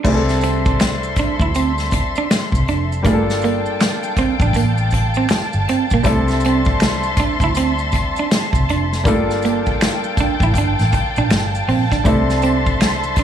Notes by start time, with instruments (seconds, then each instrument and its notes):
0.04 fingered electric bass C2, grand piano G3 C4 D4 E4, clean electric guitar A3, string section A4 E5 C6, kick, crash, maracas
0.08 grand piano G#4
0.14 grand piano A4
0.29 snare, maracas
0.41 clean electric guitar C4, closed hi-hat, maracas
0.66 kick, maracas
0.80 finger snap, muted clean electric guitar stroke, snare, closed hi-hat, maracas
1.03 maracas
1.16 clean electric guitar D4, muted fingered electric bass stroke, kick, closed hi-hat, maracas
1.40 fingered electric bass D2, clean electric guitar E4, kick, maracas
1.55 clean electric guitar C4, closed hi-hat, maracas
1.78 snare, maracas
1.91 muted clean electric guitar stroke, kick, closed hi-hat, maracas
2.16 clean electric guitar D4, maracas
2.31 finger snap, snare, closed hi-hat, maracas
2.52 fingered electric bass C2, kick, maracas
2.68 fingered electric bass F1, clean electric guitar D4, closed hi-hat
2.92 maracas
3.03 fingered electric bass G1, grand piano G3 A#3 D4 F4, clean electric guitar A3, string section F5 G5 A5, kick, closed hi-hat, maracas
3.07 grand piano G#4
3.14 grand piano A4
3.30 snare, maracas
3.41 clean electric guitar A#3, closed hi-hat, maracas
3.66 maracas
3.81 finger snap, muted clean electric guitar stroke, snare, closed hi-hat, maracas
4.03 maracas
4.16 clean electric guitar C4, muted fingered electric bass stroke, kick, closed hi-hat, maracas
4.40 fingered electric bass A1, clean electric guitar D4, kick, maracas
4.53 clean electric guitar A#3, kick, closed hi-hat, maracas
4.78 maracas
4.91 muted clean electric guitar stroke, kick, closed hi-hat, maracas
5.14 clean electric guitar C4, maracas
5.29 finger snap, muted fingered electric bass stroke, muted clean electric guitar stroke, snare, closed hi-hat, maracas
5.53 fingered electric bass G1, maracas
5.69 clean electric guitar C4, closed hi-hat
5.90 fingered electric bass A#1, clean electric guitar A#3, kick, maracas
6.03 fingered electric bass C2, grand piano G3 C4 D4 E4, clean electric guitar A3, string section E5 C6, kick, closed hi-hat, maracas
6.07 grand piano A4
6.28 snare, maracas
6.40 maracas
6.45 clean electric guitar C4, closed hi-hat
6.65 kick, maracas
6.80 finger snap, muted clean electric guitar stroke, snare, closed hi-hat, maracas
7.03 maracas
7.17 clean electric guitar D4, muted fingered electric bass stroke, kick, closed hi-hat, maracas
7.40 fingered electric bass D2, clean electric guitar E4, kick, maracas
7.55 clean electric guitar C4, closed hi-hat, maracas
7.79 maracas
7.92 muted clean electric guitar stroke, kick, closed hi-hat, maracas
8.16 clean electric guitar D4, maracas
8.31 finger snap, snare, closed hi-hat, maracas
8.53 fingered electric bass C2, kick, maracas
8.69 fingered electric bass F1, clean electric guitar D4, closed hi-hat
8.93 snare, maracas
9.04 fingered electric bass G1, grand piano G3 A#3 D4 F4, string section F5 G5 A5, kick, closed hi-hat, maracas
9.08 clean electric guitar A3, grand piano A4
9.30 snare, maracas
9.42 clean electric guitar A#3, closed hi-hat, maracas
9.66 kick, maracas
9.81 finger snap, muted clean electric guitar stroke, snare, closed hi-hat, maracas
10.04 maracas
10.17 clean electric guitar D4, muted fingered electric bass stroke, kick, closed hi-hat, maracas
10.40 fingered electric bass A1, clean electric guitar E4, kick, maracas
10.54 fingered electric bass G1, kick, closed hi-hat, maracas
10.58 clean electric guitar D4
10.79 fingered electric bass A1, snare, maracas
10.93 muted clean electric guitar stroke, kick, closed hi-hat, maracas
11.16 fingered electric bass A#1, clean electric guitar D4, maracas
11.31 fingered electric bass G1, finger snap, muted clean electric guitar stroke, snare, closed hi-hat, maracas
11.55 maracas
11.68 fingered electric bass A#1, clean electric guitar C4, open hi-hat
11.92 clean electric guitar D4, kick, snare, maracas
12.04 fingered electric bass C2, grand piano G3 C4 D4 E4, clean electric guitar A3, string section E5 C6, kick, closed hi-hat, maracas
12.08 grand piano A4
12.30 snare, maracas
12.42 clean electric guitar C4, closed hi-hat, maracas
12.66 kick, maracas
12.81 finger snap, muted clean electric guitar stroke, snare, closed hi-hat, maracas
13.03 maracas
13.16 clean electric guitar D4, muted fingered electric bass stroke, kick, closed hi-hat, maracas